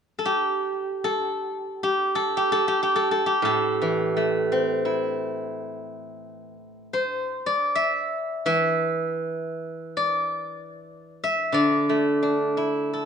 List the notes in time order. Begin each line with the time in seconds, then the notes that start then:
0.19 A4
0.25 G4
1.04 A4
1.83 G4
2.15 A4
2.37 G4
2.52 A4
2.68 G4
2.83 G4
2.96 A4
3.11 A4
3.26 G4
3.42 A2 A4
3.82 E3
4.17 A3
4.52 C4
4.85 E4
6.93 C5
7.46 D5
7.75 E5
8.46 E3 E5
9.97 D5
11.24 E5
11.52 D3 D5
11.89 A3
12.23 D4
12.57 E4
12.94 A4